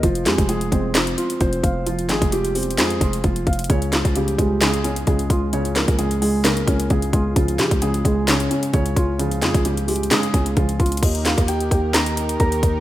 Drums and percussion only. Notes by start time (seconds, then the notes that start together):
0.03 kick, closed hi-hat
0.15 closed hi-hat
0.26 snare, clap, closed hi-hat
0.38 kick, closed hi-hat
0.49 closed hi-hat
0.61 closed hi-hat
0.72 kick, closed hi-hat
0.95 snare, clap, closed hi-hat
1.07 closed hi-hat
1.18 closed hi-hat
1.30 closed hi-hat
1.41 kick, closed hi-hat
1.53 closed hi-hat
1.64 kick, closed hi-hat
1.87 closed hi-hat
1.99 closed hi-hat
2.09 snare, clap, closed hi-hat
2.22 kick, closed hi-hat
2.32 closed hi-hat
2.45 closed hi-hat
2.55 closed hi-hat, open hi-hat
2.63 closed hi-hat
2.71 closed hi-hat
2.78 snare, clap, closed hi-hat
2.90 closed hi-hat
3.01 kick, closed hi-hat
3.13 closed hi-hat
3.24 kick, closed hi-hat
3.36 closed hi-hat
3.47 kick, closed hi-hat
3.53 closed hi-hat
3.59 closed hi-hat
3.64 closed hi-hat
3.70 kick, closed hi-hat
3.82 closed hi-hat
3.93 snare, clap, closed hi-hat
4.05 kick, closed hi-hat
4.16 closed hi-hat
4.28 closed hi-hat
4.39 kick, closed hi-hat
4.61 snare, clap, closed hi-hat
4.74 closed hi-hat
4.84 closed hi-hat
4.96 closed hi-hat
5.07 kick, closed hi-hat
5.19 closed hi-hat
5.30 kick, closed hi-hat
5.53 closed hi-hat
5.65 closed hi-hat
5.76 snare, clap, closed hi-hat
5.88 kick, closed hi-hat
5.99 closed hi-hat
6.11 closed hi-hat
6.22 open hi-hat
6.45 snare, clap, closed hi-hat
6.57 closed hi-hat
6.67 kick, closed hi-hat
6.80 closed hi-hat
6.90 kick, closed hi-hat
7.02 closed hi-hat
7.13 kick, closed hi-hat
7.36 kick, closed hi-hat
7.48 closed hi-hat
7.59 snare, clap, closed hi-hat
7.71 kick, closed hi-hat
7.82 closed hi-hat
7.94 closed hi-hat
8.05 kick, closed hi-hat
8.28 snare, clap, closed hi-hat
8.40 closed hi-hat
8.51 closed hi-hat
8.63 closed hi-hat
8.73 kick, closed hi-hat
8.86 closed hi-hat
8.96 kick, closed hi-hat
9.19 closed hi-hat
9.31 closed hi-hat
9.42 snare, clap, closed hi-hat
9.54 kick, closed hi-hat
9.65 closed hi-hat
9.77 closed hi-hat
9.88 closed hi-hat, open hi-hat
9.96 closed hi-hat
10.03 closed hi-hat
10.11 snare, clap, closed hi-hat
10.23 closed hi-hat
10.34 kick, closed hi-hat
10.46 closed hi-hat
10.57 kick, closed hi-hat
10.69 closed hi-hat
10.80 kick, closed hi-hat
10.86 closed hi-hat
10.92 closed hi-hat
10.97 closed hi-hat
11.03 kick, closed hi-hat, crash
11.15 closed hi-hat
11.25 snare, clap, closed hi-hat
11.38 kick, closed hi-hat
11.48 closed hi-hat
11.61 closed hi-hat
11.71 kick, closed hi-hat
11.94 snare, clap, closed hi-hat
12.06 closed hi-hat
12.17 closed hi-hat
12.29 closed hi-hat
12.40 kick, closed hi-hat
12.52 closed hi-hat
12.63 kick, closed hi-hat